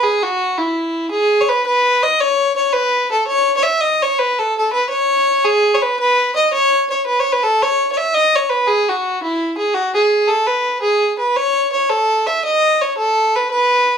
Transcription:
0.03 G#4
0.23 F#4
0.58 E4
1.11 G#4
1.41 C#5
1.49 B4
1.66 B4
2.03 D#5
2.20 C#5
2.56 C#5
2.73 B4
3.12 A4
3.27 C#5
3.57 C#5
3.63 E5
3.80 D#5
4.02 C#5
4.19 B4
4.39 A4
4.58 A4
4.73 B4
4.90 C#5
5.45 G#4
5.74 C#5
5.81 B4
5.99 B4
6.36 D#5
6.53 C#5
6.90 C#5
7.06 B4
7.20 C#5
7.32 B4
7.43 A4
7.62 C#5
7.92 C#5
7.97 E5
8.14 D#5
8.36 C#5
8.50 B4
8.67 G#4
8.88 F#4
9.22 E4
9.58 G#4
9.74 F#4
9.95 G#4
10.27 A4
10.47 B4
10.81 G#4
11.18 B4
11.36 C#5
11.72 C#5
11.90 A4
12.26 E5
12.45 D#5
12.81 C#5
12.97 A4
13.35 B4
13.51 B4

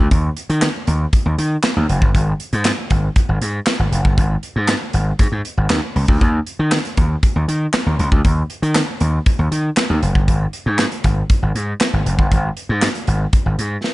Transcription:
0.11 D#2, kick, closed hi-hat
0.37 closed hi-hat
0.50 D#3, closed hi-hat
0.62 snare, clap, closed hi-hat
0.87 D#2, closed hi-hat
1.13 kick, closed hi-hat
1.26 D#2
1.38 D#3, closed hi-hat
1.63 snare, clap, closed hi-hat
1.77 D#2
1.89 F#1, closed hi-hat
2.02 G1, kick
2.15 G#1, kick, closed hi-hat
2.40 closed hi-hat
2.53 G#2, closed hi-hat
2.65 snare, clap, closed hi-hat
2.90 G#1, kick, closed hi-hat
3.16 kick, closed hi-hat
3.29 G#1
3.41 G#2, closed hi-hat
3.66 snare, clap, closed hi-hat
3.79 G#1
3.92 F#1, closed hi-hat
4.05 G1, kick
4.18 G#1, kick, closed hi-hat
4.43 closed hi-hat
4.56 G#2
4.68 snare, clap, closed hi-hat
4.93 G#1, closed hi-hat
5.19 G#2, kick, closed hi-hat
5.32 G#2
5.45 closed hi-hat
5.57 G#1
5.70 D#2, snare, clap, closed hi-hat
5.96 C#2, open hi-hat
6.08 D2, kick
6.21 D#2, kick, closed hi-hat
6.46 closed hi-hat
6.59 D#3
6.72 snare, clap, closed hi-hat
6.85 closed hi-hat
6.97 D#2, kick, closed hi-hat
7.23 kick, closed hi-hat
7.36 D#2
7.48 D#3, closed hi-hat
7.73 snare, clap, closed hi-hat
7.86 D#2
7.99 C#2, closed hi-hat
8.12 D2, kick
8.25 D#2, kick, closed hi-hat
8.50 closed hi-hat
8.62 D#3, closed hi-hat
8.75 snare, clap, closed hi-hat
9.00 D#2, closed hi-hat
9.26 kick, closed hi-hat
9.39 D#2
9.51 D#3, closed hi-hat
9.77 snare, clap, closed hi-hat
9.90 D#2
10.02 F#1, closed hi-hat
10.15 G1, kick
10.28 G#1, kick, closed hi-hat
10.53 closed hi-hat
10.66 G#2
10.79 snare, clap, closed hi-hat
10.92 closed hi-hat
11.04 G#1, kick, closed hi-hat
11.30 kick, closed hi-hat
11.42 G#1
11.55 G#2, closed hi-hat
11.81 snare, clap, closed hi-hat
11.93 G#1
12.06 F#1, closed hi-hat
12.19 G1, kick
12.32 G#1, kick, closed hi-hat
12.57 closed hi-hat
12.69 G#2
12.82 snare, clap, closed hi-hat
12.95 closed hi-hat
13.07 G#1, closed hi-hat
13.33 kick, closed hi-hat
13.46 G#1
13.59 G#2, closed hi-hat
13.84 snare

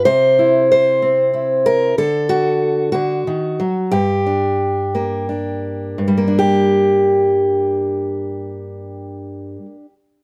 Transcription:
0.05 C3 C5
0.39 E4
0.72 C5
1.02 C4
1.33 E4
1.66 A#4
1.98 D3 A4
2.29 F#4
2.92 D3 F#4
3.27 D#3
3.60 F#3
3.92 G2 G4
4.26 D4
4.95 A#3
5.29 D4
5.98 G2
6.08 G3
6.17 A#3
6.28 D4
6.39 G4

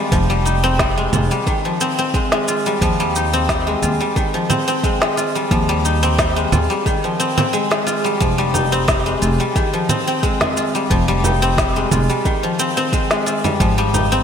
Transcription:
Already playing: D#3 F3 G3 G#3 C4 D#4 F4
0.12 F1 F3, kick, shaker
0.30 G3, shaker
0.45 D#4, shaker
0.64 C4, shaker
0.79 G3, kick, snare, shaker
0.97 G#3, shaker
1.13 F1 F4, low conga, shaker
1.31 G3, shaker
1.47 D#3, kick, shaker
1.65 F3, shaker
1.81 C4, shaker
1.98 C4, shaker
2.14 G#3, kick, shaker
2.32 G#3, snare, shaker
2.48 F4, shaker
2.66 G3, shaker
2.81 D#2 F3, kick, shaker
3.00 G3, shaker
3.16 D#4, shaker
3.33 C4, shaker
3.49 G3, kick, snare, shaker
3.67 G#3, shaker
3.82 D#2 F4, shaker
4.00 G3, shaker
4.16 D#3, kick, shaker
4.34 F3, shaker
4.50 C4, low conga, shaker
4.68 C4, shaker
4.84 G#3, kick, shaker
5.01 G#3, snare, shaker
5.17 F4, shaker
5.35 G3, shaker
5.51 D#2 F3, kick, shaker
5.69 G3, shaker
5.85 D#4, shaker
6.03 C4, shaker
6.18 G3, kick, snare, shaker
6.36 G#3, shaker
6.52 D#2 F4, low conga, shaker
6.70 G3, shaker
6.86 D#3, kick, shaker
7.04 F3, shaker
7.20 C4, shaker
7.38 C4, low conga, shaker
7.53 G#3, shaker
7.71 G#3, snare, shaker
7.87 F4, shaker
8.04 G3, shaker
8.20 F1 F3, kick, shaker
8.38 G3, shaker
8.54 D#4, frame drum, shaker
8.72 C4, shaker
8.88 G3, kick, snare, shaker
9.06 G#3, shaker
9.22 F1 F4, shaker
9.40 G3, shaker
9.56 D#3, kick, shaker
9.73 F3, shaker
9.89 C4, low conga, shaker
10.07 C4, shaker
10.23 G#3, kick, shaker
10.41 G#3, snare, frame drum, shaker
10.57 F4, shaker
10.75 G3, shaker
10.90 F1 F3, kick, shaker
11.08 G3, shaker
11.24 D#4, frame drum, shaker
11.42 C4, shaker
11.58 G3, kick, snare, shaker
11.76 G#3, shaker
11.92 F1 F4, low conga, shaker
12.09 G3, shaker
12.25 D#3, kick, shaker
12.43 F3, shaker
12.59 C4, shaker
12.77 C4, shaker
12.93 G#3, kick, shaker
13.11 G#3, snare, shaker
13.26 F4, shaker
13.44 G3, frame drum, shaker
13.60 G#1 F3, kick, shaker
13.78 G3, shaker
13.94 D#4, frame drum, shaker
14.12 C4, shaker

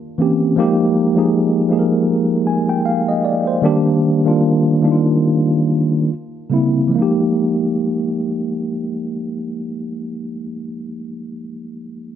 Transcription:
0.18 E3 A#3 C4 C#4 G4
0.56 F3 G#3 A#3 D#4 G4
1.15 F3 G#3 A#3 D#4 G#4
1.69 F3 G#3 A#3 D#4 G#4
1.79 A#4
2.47 G#5
2.69 G5
2.86 F5
3.09 D#5
3.25 D5
3.47 C5
3.62 D#3 G3 A#3 D4 G4
4.24 D#3 G3 A#3 D4 F4
4.82 D#3 G3 A#3 D4 D#4
4.92 F4
6.50 C#3 G3 A#3 C4 E4
6.88 F3 G#3
6.95 A#3 D#4
7.02 G4

